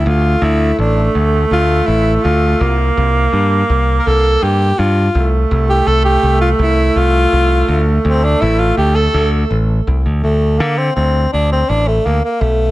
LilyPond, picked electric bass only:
\new Staff \with { instrumentName = "Picked electric bass" } { \clef bass \time 7/4 \key d \minor \tempo 4 = 165 d,4 d,4 a,,4 d,4 d,4 a,,4 d,4 | c,4 c,4 g,4 c,4 c,4 g,4 g,4 | c,4 c,4 c,4 c,4 c,4 c,4 c,4 | d,4 d,4 a,,4 d,4 d,4 a,,4 c,8 d,8 |
d,4 d4 d,4 d,4 a,,4 d,8 r8 b,,4 | }